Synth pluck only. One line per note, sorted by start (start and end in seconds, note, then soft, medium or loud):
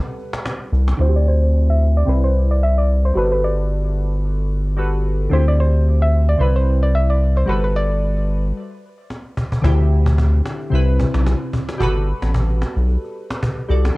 0.00 0.42 G4 medium
1.01 1.16 C5 loud
1.16 1.28 D5 medium
1.28 1.70 C5 loud
1.70 1.97 E5 loud
1.97 2.09 D5 medium
2.09 2.15 B4 loud
2.24 2.36 C5 medium
2.51 2.61 D5 medium
2.63 2.76 E5 loud
2.78 2.90 D5 medium
3.05 3.16 C5 medium
3.17 3.30 B4 loud
3.32 3.44 B4 medium
3.44 5.02 D5 medium
5.33 5.48 C5 loud
5.48 5.59 D5 medium
5.60 6.03 C5 loud
6.02 6.27 E5 loud
6.29 6.41 D5 medium
6.41 6.56 B4 medium
6.56 6.83 C5 medium
6.83 6.95 D5 medium
6.95 7.10 E5 loud
7.10 7.37 D5 medium
7.37 7.49 C5 medium
7.49 7.63 B4 medium
7.64 7.76 B4 medium
7.76 9.34 D5 medium